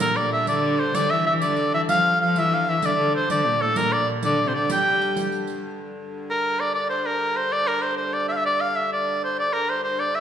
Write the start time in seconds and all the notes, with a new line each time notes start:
Already playing: G2 D3
0.00 A#2 A#4, riq
0.16 D5
0.33 E5
0.47 D3 D5, riq
0.79 C5
0.95 D3 D5, riq
1.10 E3 E5
1.26 E3 E5
1.41 D3 D5, riq
1.57 riq
1.73 E3 E5
1.88 G2 D3 F3 F5, riq
2.21 F3 F5
2.36 E3 E5, riq
2.54 F5
2.68 E3 E5
2.82 D3 D5, riq
2.97 D3
3.15 C5
3.30 D3 D5, riq
3.46 A#2
3.61 A2 A4
3.76 A#2 A#4, riq
3.92 D5
4.23 D3 D5, riq
4.45 C3 C5
4.53 D3 D5
4.69 G3 G5, riq
5.02 riq
5.16 riq
5.32 riq
5.47 riq
5.65 G2 D3
6.30 A#4
6.60 D5
6.74 D5
6.89 C5
7.06 A#4
7.36 C5
7.52 D5
7.67 A#4
7.82 C5
7.97 C5
8.13 D5
8.28 E5 F5
8.37 E5
8.45 D5
8.61 F5
8.76 E5
8.93 D5
9.24 C5
9.37 G2 D3 D5
9.53 A#4
9.69 C5
9.84 C5
10.00 D5
10.15 E5